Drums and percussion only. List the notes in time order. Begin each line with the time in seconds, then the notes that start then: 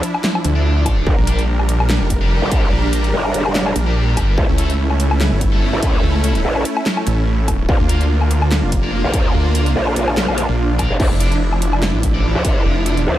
0.03 closed hi-hat
0.14 low woodblock
0.24 snare, clap
0.35 low woodblock
0.45 closed hi-hat
0.86 kick, closed hi-hat, low woodblock
1.07 kick
1.27 closed hi-hat
1.39 closed hi-hat
1.59 low woodblock
1.69 closed hi-hat
1.80 low woodblock
1.89 snare, clap
2.10 kick, closed hi-hat
2.51 kick, closed hi-hat
2.93 closed hi-hat
3.04 closed hi-hat
3.25 low woodblock
3.34 closed hi-hat
3.46 low woodblock
3.55 snare, clap
3.66 low woodblock
3.76 closed hi-hat
4.17 kick, closed hi-hat, low woodblock
4.38 kick
4.58 closed hi-hat
4.70 closed hi-hat
4.90 low woodblock
5.00 closed hi-hat
5.11 low woodblock
5.21 snare, clap
5.41 kick, closed hi-hat
5.82 kick, closed hi-hat
6.24 closed hi-hat
6.35 closed hi-hat
6.56 low woodblock
6.65 closed hi-hat
6.77 low woodblock
6.86 snare, clap
6.97 low woodblock
7.07 closed hi-hat
7.48 kick, closed hi-hat, low woodblock
7.69 kick
7.89 closed hi-hat
8.01 closed hi-hat
8.21 low woodblock
8.31 closed hi-hat
8.42 low woodblock
8.51 snare, clap
8.72 kick, closed hi-hat
9.14 kick, closed hi-hat
9.55 closed hi-hat
9.66 closed hi-hat
9.87 low woodblock
9.96 closed hi-hat
10.08 low woodblock
10.17 snare, clap
10.28 low woodblock
10.38 closed hi-hat
10.79 kick, closed hi-hat, low woodblock
11.00 kick, crash
11.20 closed hi-hat
11.32 closed hi-hat
11.53 low woodblock
11.62 closed hi-hat
11.73 low woodblock
11.82 snare, clap
12.03 kick, closed hi-hat
12.45 kick, closed hi-hat
12.86 closed hi-hat
12.97 closed hi-hat